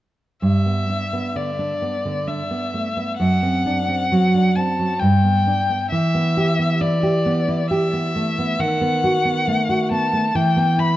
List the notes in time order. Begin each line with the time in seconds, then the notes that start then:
0.42 G2 E5
0.66 B3
0.90 D4
1.13 B3
1.36 D3 D5
1.59 D4
1.82 B3
2.05 D3
2.27 D4 E5
2.51 B3
2.74 A3
2.97 B3
3.19 F#2 F#5
3.43 C4
3.66 D4
3.88 C4
4.12 F#3
4.35 D4
4.56 C4 A5
4.79 F#3
5.00 G2 G5
5.24 B3
5.47 D4
5.70 B3
5.91 E3 E5
6.15 B3
6.37 G4
6.59 B3
6.81 E4 D5
7.03 G4
7.26 B3
7.48 E4
7.70 G4 E5
7.93 B3
8.16 A3
8.39 B3
8.59 D#3 F#5
8.81 B3
9.04 F#4
9.25 B3
9.48 A3
9.69 F#4
9.91 B3 A5
10.13 A3
10.35 E3 G5
10.57 B3
10.78 E4 B5